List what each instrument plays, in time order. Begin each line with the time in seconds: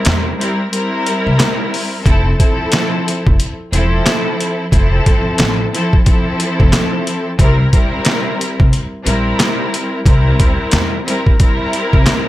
Already playing: string section G3 C4 E4 A#4
0.05 upright bass E2, snare, clap, closed hi-hat
0.38 string section G3 C4 E4 A#4, closed hi-hat
0.72 string section G3 C4 E4 A#4, closed hi-hat
1.07 closed hi-hat
1.27 upright bass C2
1.40 snare, clap, closed hi-hat
1.74 open hi-hat
2.03 upright bass F1, string section F3 C4 E4 A4, kick, closed hi-hat
2.39 string section F3 C4 E4 A4, kick, closed hi-hat
2.72 snare, clap, closed hi-hat
3.08 closed hi-hat
3.27 upright bass F1, kick
3.40 closed hi-hat
3.72 upright bass E1, string section F3 C4 E4 A4, closed hi-hat
4.06 snare, clap, closed hi-hat
4.41 closed hi-hat
4.71 upright bass F1, string section F3 C4 E4 A4, kick, closed hi-hat
5.06 upright bass G1, kick, closed hi-hat
5.38 upright bass A1, snare, clap, closed hi-hat
5.72 string section F3 C4 E4 A4, closed hi-hat
5.93 kick
6.04 string section F3 C4 E4 A4, kick, closed hi-hat
6.40 closed hi-hat
6.60 upright bass F1, kick
6.73 snare, clap, closed hi-hat
7.07 closed hi-hat
7.39 upright bass C2, string section G3 C4 E4 A#4, kick, closed hi-hat
7.72 string section G3 C4 E4 A#4, kick, closed hi-hat
8.05 snare, clap, closed hi-hat
8.41 closed hi-hat
8.60 upright bass C2, kick
8.73 closed hi-hat
9.04 upright bass A#1, string section G3 C4 E4 A#4, closed hi-hat
9.40 snare, clap, closed hi-hat
9.74 closed hi-hat
10.04 upright bass C2, string section G3 C4 E4 A#4, kick, closed hi-hat
10.40 upright bass D2, kick, closed hi-hat
10.71 upright bass E2, snare, clap, closed hi-hat
11.05 string section G3 C4 E4 A#4, closed hi-hat
11.27 kick
11.39 string section G3 C4 E4 A#4, kick, closed hi-hat
11.73 closed hi-hat
11.93 upright bass C2, kick
12.07 snare, clap, closed hi-hat